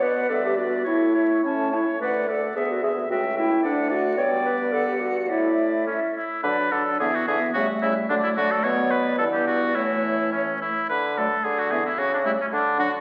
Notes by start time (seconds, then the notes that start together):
Already playing: B2
0.01 B3 B4 D5 F#5
0.29 G2 B3 A4 D5 E5
0.46 G4
0.57 B3 F#4 D5 E5
0.84 A2 A3 E4 C#5 E5
1.14 A3 C#5 E5
1.43 A2 A3 C#4 C#5 A5
1.71 A3 E4 C#5
2.00 D2 A3 B4 D5 F#5
2.28 A3 A4 D5 F#5
2.55 D2 B3 G#4 E5
2.71 F#4
2.83 B3 G#4 E5
3.09 C#2 A3 F#4 E5 G5
3.36 A3 E4 E5 G5
3.63 D2 A3 D4 D5 F#5
3.90 A3 F#4 D5 F#5
4.16 G2 B3 C#5 D5 G5
4.46 B4
4.72 A4 F#5
4.88 G4
5.01 F#4
5.28 A2 A3 E4 D5 E5
5.86 A3 C#4 E5
6.16 E4
6.43 D3 F#3 D4 B4 D5
6.72 D3 F#3 D4 A4 D5
7.00 D3 E3 B3 G#4 E5
7.15 F#4
7.27 D3 E3 B3 G#4 E5
7.54 C#3 G3 A3 F#4 E5
7.82 C#3 G3 A3 E4 E5
8.09 D3 F#3 A3 D4 D5
8.24 E4
8.36 D3 F#3 A3 F#4 D5
8.51 A4
8.63 B2 F#3 B3 C#5 D5
8.91 B4
9.18 G2 E3 B3 A4 D5
9.33 G4
9.47 F#4
9.75 A2 E3 A3 E4 C#5
10.32 E3 A3 C#4 C#5
10.62 E4
10.89 D3 B4
11.18 F#3 A3 A4 D5
11.44 D3 G#4
11.59 F#4
11.70 E3 B3 G#4 E5
11.86 E4
11.98 C#3 F#4
12.14 D4
12.24 G3 A3 E4 E5
12.41 C#4
12.52 D3 D4
12.78 F#3 D4 F#4 F#5